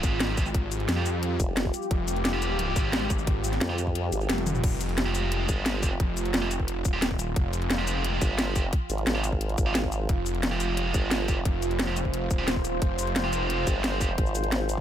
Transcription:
Already playing: distorted electric guitar G#3 C4 F4 G4, ambient pad F4 G4
0.03 detuned saw bass G#1, kick, closed hi-hat, shaker
0.20 snare, closed hi-hat
0.37 distorted electric guitar G#3 C4 F4 G4, kick, closed hi-hat, shaker
0.46 shaker
0.54 kick, closed hi-hat
0.72 closed hi-hat, shaker
0.80 closed hi-hat
0.89 detuned saw bass F2, snare, closed hi-hat
0.97 distorted electric guitar G#3 C4 F4 G4
1.06 closed hi-hat, shaker
1.23 closed hi-hat
1.40 wobble bass F1, kick, closed hi-hat, shaker
1.57 snare, closed hi-hat
1.65 kick
1.74 closed hi-hat, shaker
1.82 shaker
1.91 detuned saw bass F1, kick, closed hi-hat
2.08 closed hi-hat, shaker
2.16 closed hi-hat
2.25 snare, closed hi-hat
2.33 distorted electric guitar G#3 C4 F4 G4
2.42 closed hi-hat, shaker
2.59 closed hi-hat
2.76 detuned saw bass G#1, kick, closed hi-hat, shaker
2.93 snare, closed hi-hat
3.10 kick, closed hi-hat, shaker
3.19 shaker
3.27 kick, closed hi-hat
3.44 closed hi-hat, shaker
3.53 snare, closed hi-hat
3.61 wobble bass F2, snare, closed hi-hat
3.69 distorted electric guitar G#3 C4 F4 G4
3.78 closed hi-hat, shaker
3.87 kick
3.95 closed hi-hat
4.12 wobble bass G#1, closed hi-hat, shaker
4.21 shaker
4.29 detuned saw bass F1, snare, closed hi-hat, high tom
4.38 closed hi-hat, high tom
4.47 closed hi-hat, mid tom, shaker
4.55 mid tom, shaker
4.64 detuned saw bass F1, ambient pad F4, kick, closed hi-hat, crash
4.81 closed hi-hat, shaker
4.89 closed hi-hat
4.98 snare, closed hi-hat
5.06 distorted electric guitar G#3 C4 F4 G4
5.15 closed hi-hat, shaker
5.32 closed hi-hat
5.49 wobble bass G1, kick, closed hi-hat, shaker
5.66 snare, closed hi-hat
5.83 distorted electric guitar G#3 C4 F4 G4, kick, closed hi-hat, shaker
6.00 detuned saw bass F1, kick, closed hi-hat
6.17 closed hi-hat, shaker
6.25 closed hi-hat
6.34 snare, closed hi-hat
6.42 distorted electric guitar G#3 C4 F4 G4
6.51 closed hi-hat, shaker
6.60 kick
6.68 closed hi-hat
6.85 detuned saw bass D#1, kick, closed hi-hat, shaker
6.93 distorted electric guitar G#3 C4 F4 G4
7.02 snare, closed hi-hat
7.11 kick
7.19 closed hi-hat, shaker
7.36 detuned saw bass F1, kick, closed hi-hat
7.53 closed hi-hat, shaker
7.62 closed hi-hat
7.70 snare, closed hi-hat
7.79 distorted electric guitar G#3 C4 F4 G4
7.87 closed hi-hat, shaker
8.04 closed hi-hat
8.22 wobble bass G1, kick, closed hi-hat, shaker
8.39 snare, closed hi-hat
8.55 distorted electric guitar G#3 C4 F4 G4, kick, closed hi-hat, shaker
8.73 kick, closed hi-hat
8.90 wobble bass G#1, closed hi-hat, shaker
8.98 closed hi-hat
9.07 wobble bass G#1, snare, closed hi-hat
9.15 distorted electric guitar G#3 C4 F4 G4
9.24 closed hi-hat, shaker
9.32 kick
9.41 closed hi-hat
9.49 closed hi-hat
9.58 wobble bass G#1, kick, closed hi-hat, shaker
9.66 distorted electric guitar G#3 C4 F4 G4
9.75 snare, closed hi-hat
9.84 kick
9.92 closed hi-hat, shaker
10.09 detuned saw bass F1, ambient pad C5, kick, closed hi-hat
10.26 closed hi-hat, shaker
10.35 closed hi-hat
10.43 snare, closed hi-hat
10.51 distorted electric guitar G#3 C4 F4 G4
10.60 closed hi-hat, shaker
10.77 closed hi-hat
10.94 wobble bass G1, kick, closed hi-hat, shaker
11.11 snare, closed hi-hat
11.28 distorted electric guitar G#3 C4 F4 G4, kick, closed hi-hat, shaker
11.45 detuned saw bass F1, kick, closed hi-hat
11.62 closed hi-hat, shaker
11.71 closed hi-hat
11.79 snare, closed hi-hat
11.88 distorted electric guitar G#3 C4 F4 G4
11.97 closed hi-hat, shaker
12.05 kick
12.14 closed hi-hat
12.31 detuned saw bass D#1, kick, closed hi-hat, shaker
12.39 distorted electric guitar G#3 C4 F4 G4
12.48 snare, closed hi-hat
12.56 kick
12.65 closed hi-hat, shaker
12.82 detuned saw bass F1, kick, closed hi-hat
12.99 closed hi-hat, shaker
13.07 closed hi-hat
13.16 snare, closed hi-hat
13.24 distorted electric guitar G#3 C4 F4 G4
13.33 closed hi-hat, shaker
13.50 closed hi-hat
13.67 wobble bass G1, kick, closed hi-hat, shaker
13.84 snare, closed hi-hat
14.01 distorted electric guitar G#3 C4 F4 G4, kick, closed hi-hat, shaker
14.18 wobble bass G#1, kick, closed hi-hat
14.27 shaker
14.35 closed hi-hat, shaker
14.44 closed hi-hat
14.52 snare, closed hi-hat
14.69 closed hi-hat, shaker

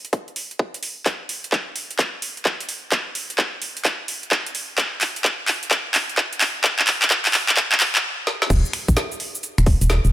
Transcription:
0.05 closed hi-hat
0.13 kick, closed hi-hat
0.28 closed hi-hat
0.36 open hi-hat
0.51 closed hi-hat
0.59 kick
0.74 closed hi-hat
0.83 open hi-hat
1.06 kick, clap, closed hi-hat
1.29 open hi-hat
1.44 closed hi-hat
1.52 kick, clap
1.76 open hi-hat
1.91 closed hi-hat
1.99 kick, clap, closed hi-hat
2.22 open hi-hat
2.37 closed hi-hat
2.45 kick, clap
2.60 closed hi-hat
2.69 open hi-hat
2.92 kick, clap, closed hi-hat
3.15 open hi-hat
3.30 closed hi-hat
3.38 kick, clap
3.62 open hi-hat
3.77 closed hi-hat
3.85 kick, clap, closed hi-hat
4.08 open hi-hat
4.23 closed hi-hat
4.31 kick, clap
4.46 closed hi-hat
4.55 open hi-hat
4.78 kick, clap, closed hi-hat
5.01 clap, open hi-hat
5.16 closed hi-hat
5.25 kick, clap
5.48 clap, open hi-hat
5.63 closed hi-hat
5.71 kick, clap, closed hi-hat
5.94 clap, open hi-hat
6.09 closed hi-hat
6.18 kick, clap
6.33 closed hi-hat
6.41 clap, open hi-hat
6.64 kick, clap, closed hi-hat
6.79 clap
6.87 clap, open hi-hat
7.02 clap, closed hi-hat
7.10 kick, clap
7.25 clap, open hi-hat
7.34 clap, open hi-hat
7.49 clap, closed hi-hat
7.57 kick, clap, closed hi-hat
7.72 clap
7.80 clap, open hi-hat
7.95 clap, closed hi-hat
8.27 snare
8.42 snare
8.50 fm bass D#1, kick, closed hi-hat, crash, cabasa
8.65 cabasa
8.73 finger snap, open hi-hat
8.88 fm bass A#1, kick, closed hi-hat, cabasa
8.97 snare, cabasa
9.12 closed hi-hat, cabasa
9.20 open hi-hat
9.35 cabasa
9.43 closed hi-hat, cabasa
9.58 fm bass D#1, finger snap, closed hi-hat, cabasa
9.66 kick, open hi-hat
9.81 fm bass D#1, closed hi-hat, cabasa
9.90 snare, cabasa
10.05 fm bass D#1, closed hi-hat, cabasa

